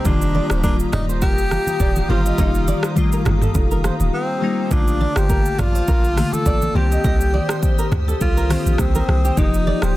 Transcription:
Already playing: ambient pad G4 A#5
0.04 808-style bass F1, synth keys D#3 G3 A#3 F4, tenor saxophone D4, ambient pad F5 D#6, kick, low conga, shaker
0.22 shaker
0.35 nylon-string guitar D5, high conga
0.50 808-style bass D1, nylon-string guitar C5, cross-stick, shaker
0.62 synth keys D#3 G3 A#3 F4, tenor saxophone D4, nylon-string guitar A#4, kick, shaker
0.79 shaker
0.92 808-style bass D#1, tenor saxophone D#4, nylon-string guitar D5, cross-stick, mid tom, high conga, low conga, shaker
1.09 nylon-string guitar C5, shaker
1.22 808-style bass F1, tenor saxophone G4, nylon-string guitar A#4, kick, low conga, shaker
1.38 shaker
1.51 cross-stick, high conga, shaker
1.67 high conga, shaker
1.80 808-style bass D#1, nylon-string guitar D5, kick, shaker
1.96 high conga, shaker
2.08 808-style bass G1, synth keys D#3 G3 A#3 G4, tenor saxophone F4, nylon-string guitar C5, high conga, low conga
2.26 nylon-string guitar D#5, shaker
2.37 808-style bass F1, synth keys D#3 G3 A#3 D#4, nylon-string guitar D#5, kick, low conga, shaker
2.55 shaker
2.68 nylon-string guitar D5, high conga, shaker
2.83 nylon-string guitar C5, cross-stick, shaker
2.95 synth keys D#3 G3 A3 F4, kick, shaker
3.04 synth keys A#3
3.12 nylon-string guitar A#4, shaker
3.25 808-style bass G1, cross-stick, mid tom, high conga, low conga, shaker
3.42 nylon-string guitar A4, mid tom, shaker
3.55 808-style bass F1, kick, low conga, shaker
3.71 nylon-string guitar A#4, high conga, shaker
3.84 nylon-string guitar C5, cross-stick, high conga, shaker
4.00 808-style bass D#1, high conga, shaker
4.14 tenor saxophone C4
4.41 synth keys D#3 G3 A#3 D#4
4.70 808-style bass A#1, synth keys D3 A3 A#3 F4, tenor saxophone D4, ambient pad F5 A5 D6, kick, low conga, shaker
4.88 shaker
5.01 nylon-string guitar D5, high conga
5.16 808-style bass G1, tenor saxophone G4, nylon-string guitar C5, cross-stick, shaker
5.30 nylon-string guitar A#4, kick, shaker
5.45 shaker
5.58 808-style bass A1, tenor saxophone F4, nylon-string guitar D5, cross-stick, mid tom, high conga, low conga, shaker
5.75 nylon-string guitar C5, shaker
5.88 808-style bass A#1, nylon-string guitar A#4, kick, low conga, shaker
6.04 shaker
6.16 synth keys D3 A3 A#3 F4, cross-stick, open hi-hat, high conga, shaker
6.33 tenor saxophone A4, high conga, shaker
6.46 808-style bass A1, nylon-string guitar D5, kick, shaker
6.62 high conga, shaker
6.74 808-style bass C2, synth keys D#3 A#3 C4 G4, ambient pad G4 C5 D#6, tenor saxophone G4, nylon-string guitar C5, high conga
6.91 nylon-string guitar D#5, shaker
7.04 808-style bass C2, nylon-string guitar D#5, kick, low conga, shaker
7.21 shaker
7.34 nylon-string guitar D5, high conga
7.49 nylon-string guitar C5, cross-stick, shaker
7.63 kick, shaker
7.79 nylon-string guitar A#4, shaker
7.92 808-style bass D2, cross-stick, mid tom, high conga, low conga, shaker
8.08 nylon-string guitar A4, shaker
8.21 808-style bass C2, tenor saxophone F4, kick, low conga, shaker
8.37 nylon-string guitar A#4, shaker
8.49 synth keys D#3 A#3 C4 G4, nylon-string guitar C5, cross-stick, open hi-hat, high conga, shaker
8.66 808-style bass A#1, high conga, shaker
8.78 808-style bass C2, tenor saxophone C4, kick, cross-stick, shaker
8.95 nylon-string guitar A#4, high conga, shaker
9.08 808-style bass C2, cross-stick, high conga
9.25 nylon-string guitar G4, shaker
9.36 808-style bass F1, synth keys F3 A#3 D#4 G4, ambient pad A#3 F4 G5, tenor saxophone D#4, kick, low conga, shaker
9.54 shaker
9.67 nylon-string guitar D5, high conga
9.82 808-style bass D1, tenor saxophone G4, nylon-string guitar C5, cross-stick, shaker

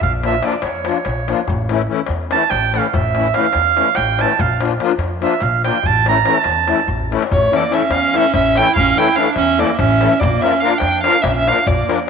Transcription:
0.01 upright bass A#1, clarinet F5, darbuka dum
0.13 darbuka tek
0.23 accordion F3 A#3 D4 F4, clarinet E5, darbuka tek
0.42 accordion F3 A#3 D4 F4, clarinet D5, darbuka tek
0.52 clarinet D5, darbuka tek
0.62 upright bass F2, clarinet C#5, darbuka tek
0.85 accordion F3 A#3 D4 F4, darbuka tek
1.05 upright bass A#1, darbuka tek
1.28 accordion F3 A#3 D4 F4, darbuka tek
1.38 darbuka tek
1.48 upright bass A1, darbuka dum
1.69 accordion E3 A3 C#4 E4, darbuka tek
1.79 darbuka tek
1.88 accordion E3 A3 C#4 E4
1.99 darbuka tek
2.06 upright bass E2, darbuka tek
2.31 accordion E3 A3 C#4 E4, clarinet A5, darbuka tek
2.41 darbuka tek
2.50 upright bass A1, clarinet G5, darbuka tek
2.74 accordion E3 A3 C#4 E4, clarinet F5, darbuka tek
2.84 clarinet F5, darbuka tek
2.94 upright bass A1, clarinet E5, darbuka dum
3.15 accordion E3 A3 C#4 E4, darbuka tek
3.24 darbuka tek
3.34 accordion E3 A3 C#4 E4, clarinet F5, darbuka tek
3.44 darbuka tek
3.53 upright bass E2, darbuka tek
3.77 accordion E3 A3 C#4 E4, darbuka tek
3.87 darbuka tek
3.95 upright bass A1, clarinet G5, darbuka tek
4.19 accordion E3 A3 C#4 E4, clarinet A5, darbuka tek
4.30 darbuka tek
4.39 upright bass A#1, clarinet F5, darbuka dum
4.61 accordion F3 A#3 D4 F4, darbuka tek
4.71 darbuka tek
4.80 accordion F3 A#3 D4 F4, darbuka tek
4.89 darbuka tek
4.98 upright bass F2, darbuka tek
5.21 accordion F3 A#3 D4 F4, clarinet E5, darbuka tek
5.32 darbuka tek
5.40 upright bass A#1, clarinet F5, darbuka tek
5.64 accordion F3 A#3 D4 F4, clarinet G5, darbuka tek
5.75 darbuka tek
5.83 upright bass A1, clarinet A5, darbuka dum
6.06 accordion E3 A3 C#4 E4, clarinet A#5, darbuka tek
6.16 darbuka tek
6.25 accordion E3 A3 C#4 E4, clarinet A5, darbuka tek
6.35 darbuka tek
6.44 upright bass E2, darbuka tek
6.67 accordion E3 A3 C#4 E4, darbuka tek
6.78 darbuka tek
6.88 upright bass A1, darbuka dum
7.00 darbuka dum
7.11 accordion E3 A3 C#4 E4, darbuka tek
7.22 darbuka tek
7.31 upright bass A1, clarinet A3, violin C#5, darbuka dum
7.52 accordion E3 A3 C#4 E4 A4, clarinet A#3, darbuka tek
7.56 violin D5
7.70 accordion E3 A3 C#4 E4 A4, clarinet C#4, violin E5, darbuka tek
7.82 darbuka tek
7.90 upright bass E2, clarinet C#4, violin F5, darbuka tek
8.13 accordion E3 A3 C#4 E4 A4, clarinet C#4, violin E5, darbuka tek
8.34 upright bass A1, clarinet C#4, violin E5, darbuka tek, darbuka dum
8.55 accordion E3 A3 C#4 E4 A4, clarinet E4, violin G5, darbuka tek
8.66 darbuka tek
8.76 upright bass A1, clarinet C#4, violin F5, darbuka dum
8.96 accordion E3 A3 C#4 E4 A4, clarinet E4, violin G5, darbuka tek
9.15 accordion E3 A3 C#4 E4 A4, clarinet D4, violin F5, darbuka tek
9.35 upright bass E2, clarinet C#4, violin E5, darbuka tek
9.58 accordion E3 A3 C#4 E4 A4, clarinet A#3, violin D5, darbuka tek
9.77 upright bass A1, clarinet C#4, violin E5, darbuka tek, darbuka dum
9.90 darbuka tek
10.01 accordion E3 A3 C#4 E4 A4, darbuka tek
10.11 darbuka tek
10.20 upright bass A#1, clarinet A#3, violin D5, darbuka dum
10.41 accordion F3 A#3 D4 F4 A#4, clarinet C#4, violin E5, darbuka tek
10.60 accordion F3 A#3 D4 F4 A#4, clarinet D4, violin F5
10.78 upright bass F2, clarinet D4, violin G5, darbuka tek
11.03 accordion F3 A#3 D4 F4 A#4, clarinet D4, violin F5, darbuka tek
11.22 upright bass A#1, clarinet A#3, violin E5, darbuka tek, darbuka dum
11.29 clarinet C#4, violin E5
11.35 clarinet C#4, violin E5, darbuka tek
11.47 accordion F3 A#3 D4 F4 A#4, clarinet D4, violin F5, darbuka tek
11.58 darbuka tek
11.67 upright bass A#1, clarinet A#3, violin D5, darbuka dum
11.78 darbuka tek
11.87 accordion F3 A#3 D4 F4 A#4, darbuka tek
11.98 darbuka tek
12.06 accordion F3 A#3

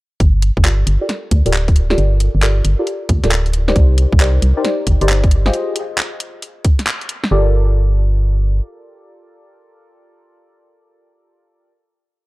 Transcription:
0.20 fm bass G1, kick, closed hi-hat
0.42 closed hi-hat
0.57 fm bass G1, kick
0.65 synth stab F4 G4 A4 A#4 D5, clap, closed hi-hat
0.87 fm bass G1, closed hi-hat
1.01 synth stab F4 G4 A4 A#4 D5
1.09 snare, closed hi-hat
1.31 fm bass D2, kick, closed hi-hat
1.46 fm bass D1, synth stab F4 G4 A4 A#4 D5, closed hi-hat
1.54 clap, closed hi-hat
1.68 kick, closed hi-hat
1.76 closed hi-hat
1.90 synth stab F4 G4 A4 A#4 D5, snare
1.98 fm bass G1, closed hi-hat
2.20 closed hi-hat
2.35 fm bass G1
2.42 synth stab F4 G4 A4 A#4 D5, clap, closed hi-hat
2.65 fm bass G1, closed hi-hat
2.79 synth stab F4 G4 A4 A#4 D5
2.87 closed hi-hat
3.09 fm bass D2, kick, closed hi-hat
3.24 fm bass D1, synth stab F4 G4 A4 A#4 D5, snare, closed hi-hat
3.31 clap, closed hi-hat
3.46 closed hi-hat
3.53 closed hi-hat
3.68 synth stab D#4 G4 A#4 C5 D5, snare
3.76 fm bass C2, kick, closed hi-hat
3.98 closed hi-hat
4.12 fm bass C2, kick
4.20 synth stab D#4 G4 A#4 C5 D5, clap, closed hi-hat
4.42 fm bass C2, closed hi-hat
4.57 synth stab D#4 G4 A#4 C5 D5
4.65 snare, closed hi-hat
4.87 fm bass G1, kick, closed hi-hat
5.01 fm bass G1, synth stab D#4 G4 A#4 C5 D5, closed hi-hat
5.09 clap, closed hi-hat
5.24 kick, closed hi-hat
5.31 closed hi-hat
5.46 synth stab F4 G4 G#4 C5 D#5, snare
5.54 closed hi-hat
5.76 closed hi-hat
5.98 clap, closed hi-hat
6.20 closed hi-hat
6.42 closed hi-hat
6.65 kick, closed hi-hat
6.79 snare, closed hi-hat
6.87 clap, closed hi-hat
7.01 closed hi-hat
7.09 closed hi-hat
7.24 snare
7.31 fm bass G1, synth stab F4 G4 A4 A#4 D5

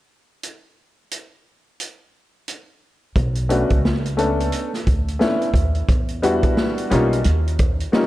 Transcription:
0.43 closed hi-hat
1.11 closed hi-hat
1.80 closed hi-hat
2.48 closed hi-hat
3.16 upright bass B1, kick, closed hi-hat
3.35 closed hi-hat
3.49 upright piano A3 B3 C#4 D4 F#4, closed hi-hat
3.70 upright bass C#2, kick, closed hi-hat
3.85 snare
4.05 closed hi-hat
4.17 upright piano A3 B3 C#4 D4 A4, closed hi-hat
4.40 closed hi-hat
4.52 closed hi-hat
4.74 snare, closed hi-hat
4.87 upright bass D2, kick, closed hi-hat
5.08 closed hi-hat
5.19 upright piano A3 B3 C#4 D4 E4, snare
5.41 closed hi-hat
5.54 upright bass D#2, kick, closed hi-hat
5.75 closed hi-hat
5.89 upright bass E2, kick, closed hi-hat
6.08 closed hi-hat
6.22 upright piano G3 B3 D4 E4 F#4, closed hi-hat
6.43 kick, closed hi-hat
6.57 snare
6.78 closed hi-hat
6.90 upright bass B1, upright piano G3 A#3 C#4 D#4 F4, snare, closed hi-hat
7.13 closed hi-hat
7.24 upright bass D#2, closed hi-hat
7.47 closed hi-hat
7.59 kick, closed hi-hat
7.80 closed hi-hat
7.92 upright piano G3 A#3 C#4 D#4 F4, snare

